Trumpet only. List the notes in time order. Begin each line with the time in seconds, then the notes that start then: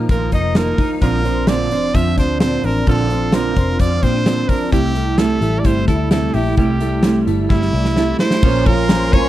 0.11 A#4
0.34 D#5
0.57 A#4
1.02 A#4
1.48 D5
1.95 E5
2.19 C5
2.41 C5
2.65 A#4
2.89 A4
3.35 A#4
3.80 D5
4.03 C5
4.49 A#4
4.73 G4
5.19 A4
5.60 D5
5.66 C5
5.88 A4
6.12 A4
6.34 G4
6.58 G4
7.51 E4
8.20 C5
8.66 A#4
9.13 C#5